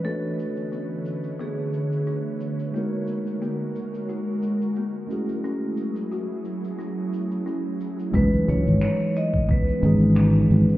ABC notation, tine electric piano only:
X:1
M:4/4
L:1/8
Q:"Swing 16ths" 1/4=89
K:C#m
V:1 name="Tine electric piano"
[A,=DFBc]8 | [G,DF^A]6- [G,DFA] [=A,CEFG]- | [A,CEFG]8 | [E,G,CDB]4- [E,G,CDB] [E,G,CDG]3 |]